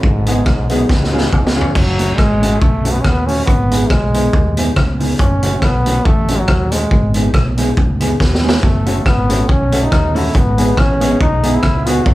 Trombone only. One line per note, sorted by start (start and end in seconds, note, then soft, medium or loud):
0.04 0.72 G#2 medium
0.70 0.91 F#2 medium
0.90 1.56 G#2 medium
1.75 2.19 F#3 medium
2.17 2.61 G#3 loud
2.60 2.94 A3 medium
2.93 3.02 B3 loud
3.01 3.09 C#4 medium
3.07 3.28 B3 loud
3.27 3.45 C#4 loud
3.46 3.90 B3 loud
3.89 4.76 G#3 medium
5.20 5.64 C#4 medium
5.62 6.07 B3 loud
6.05 6.40 A3 loud
6.38 6.73 F#3 medium
6.72 7.15 G#3 medium
8.64 9.03 A3 medium
9.07 9.52 B3 loud
9.50 9.85 C#4 medium
9.84 10.17 D#4 loud
10.16 10.37 E4 medium
10.36 10.80 B3 medium
10.79 11.21 C#4 loud
11.22 11.57 D#4 loud
11.55 11.89 E4 loud
11.87 12.09 F#4 loud
12.07 12.14 F#3 medium